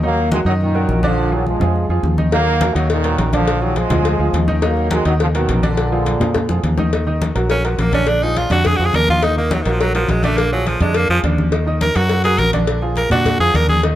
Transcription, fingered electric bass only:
0.00 0.40 D#2 loud
0.45 0.85 F#2 loud
0.88 1.55 A#1 medium
1.60 1.87 F2 loud
1.89 2.02 F2 medium
2.03 2.69 D#2 medium
2.75 3.15 D#2 medium
3.18 3.85 A#1 loud
3.90 4.17 D2 loud
4.19 4.32 D2 medium
4.33 5.00 D#2 medium
5.05 5.45 D#2 medium
5.49 6.15 A#1 loud
6.20 6.47 A#2 loud
6.49 6.62 F2 medium
6.63 7.30 D#2 medium
7.35 7.75 A#1 medium
7.78 8.45 A#1 medium
8.50 8.77 F2 medium
8.79 8.93 F2 medium
8.94 9.60 D#2 loud
9.66 10.06 A#1 loud
10.09 10.75 A#1 medium
10.80 11.07 F2 medium
11.09 11.23 F2 medium
11.23 11.90 D#2 medium
11.96 12.36 F#2 medium
12.38 13.05 A#1 medium
13.10 13.37 A#2 medium
13.39 13.53 F2 medium
13.54 13.95 D#2 medium

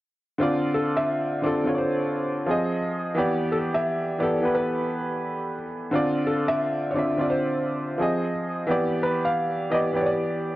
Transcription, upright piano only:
0.38 1.36 D3 medium
0.38 1.37 C4 medium
0.38 1.38 F4 medium
0.43 1.39 D5 medium
1.42 1.63 D3 medium
1.42 1.64 C4 medium
1.42 1.65 F4 medium
1.46 1.66 A4 medium
1.64 2.47 D3 medium
1.64 2.46 C4 medium
1.64 2.48 F4 medium
1.69 1.72 C#5 medium
1.75 2.52 D5 medium
2.46 3.11 F3 medium
2.46 3.12 C4 medium
2.46 3.13 G#4 medium
2.51 3.14 D#5 medium
3.15 4.12 E3 medium
3.15 4.13 B3 medium
3.15 4.14 G4 medium
3.19 4.15 D5 medium
4.18 4.39 E3 medium
4.18 4.40 B3 medium
4.18 4.41 G4 medium
4.22 4.41 A4 medium
4.41 5.63 E3 medium
4.41 5.64 B3 medium
4.41 5.65 G4 medium
4.45 5.66 B4 medium
5.91 6.89 D3 medium
5.91 6.89 C4 medium
5.91 6.90 F4 medium
5.95 6.91 D5 loud
6.94 7.15 D3 medium
6.94 7.16 C4 medium
6.94 7.17 F4 medium
6.98 7.17 E5 medium
7.16 7.99 D3 medium
7.16 7.98 C4 medium
7.16 8.00 F4 medium
7.21 8.01 D5 medium
7.98 8.63 F3 medium
7.98 8.64 C4 medium
7.98 8.65 G#4 medium
8.02 8.65 D#5 medium
8.67 9.64 E3 medium
8.67 9.65 B3 medium
8.67 9.66 G4 medium
8.71 9.67 D5 medium
9.70 9.91 E3 medium
9.70 9.92 B3 medium
9.70 9.92 G4 medium
9.74 9.93 D5 medium
9.92 10.56 E3 medium
9.92 10.56 B3 medium
9.92 10.56 G4 medium
9.96 10.56 D5 medium

